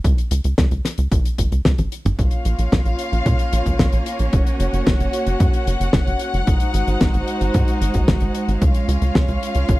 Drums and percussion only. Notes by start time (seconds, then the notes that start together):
0.04 kick, closed hi-hat
0.18 closed hi-hat
0.31 closed hi-hat
0.44 closed hi-hat
0.58 kick, snare, closed hi-hat
0.71 closed hi-hat
0.85 snare, closed hi-hat
0.98 closed hi-hat
1.12 kick, closed hi-hat
1.25 closed hi-hat
1.38 kick, closed hi-hat
1.52 closed hi-hat
1.65 kick, snare, closed hi-hat, high tom
1.78 closed hi-hat, high tom
1.92 closed hi-hat
2.06 closed hi-hat, mid tom
2.19 kick, closed hi-hat
2.31 closed hi-hat
2.45 closed hi-hat
2.59 closed hi-hat
2.72 kick, snare, closed hi-hat
2.85 closed hi-hat
2.99 closed hi-hat
3.13 closed hi-hat
3.26 kick, closed hi-hat
3.39 closed hi-hat
3.53 closed hi-hat
3.66 kick, closed hi-hat
3.79 kick, snare, closed hi-hat
3.92 closed hi-hat
4.06 closed hi-hat
4.19 closed hi-hat
4.33 kick, closed hi-hat
4.47 closed hi-hat
4.60 closed hi-hat
4.74 closed hi-hat
4.87 kick, snare, closed hi-hat
5.00 closed hi-hat
5.13 closed hi-hat
5.27 closed hi-hat
5.40 kick, closed hi-hat
5.53 closed hi-hat
5.67 closed hi-hat
5.81 closed hi-hat
5.93 kick, snare, closed hi-hat
6.07 closed hi-hat
6.19 closed hi-hat
6.34 closed hi-hat
6.47 kick, closed hi-hat
6.60 closed hi-hat
6.74 closed hi-hat
6.88 closed hi-hat
7.01 kick, snare, closed hi-hat
7.14 closed hi-hat
7.27 closed hi-hat
7.41 closed hi-hat
7.54 kick, closed hi-hat
7.68 closed hi-hat
7.82 closed hi-hat
7.94 kick, closed hi-hat
8.08 kick, snare, closed hi-hat
8.20 closed hi-hat
8.35 closed hi-hat
8.49 closed hi-hat
8.62 kick, closed hi-hat
8.74 closed hi-hat
8.89 closed hi-hat
9.02 closed hi-hat
9.15 kick, snare, closed hi-hat
9.28 closed hi-hat
9.43 closed hi-hat
9.55 closed hi-hat
9.69 kick, closed hi-hat